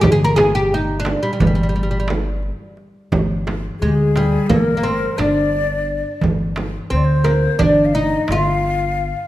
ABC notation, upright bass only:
X:1
M:9/8
L:1/8
Q:3/8=58
K:none
V:1 name="Upright bass" clef=bass
G,,,4 G,,,4 z | G,,,2 D,,2 G,,,2 G,,,3 | G,,,2 D,,2 G,,,2 G,,,3 |]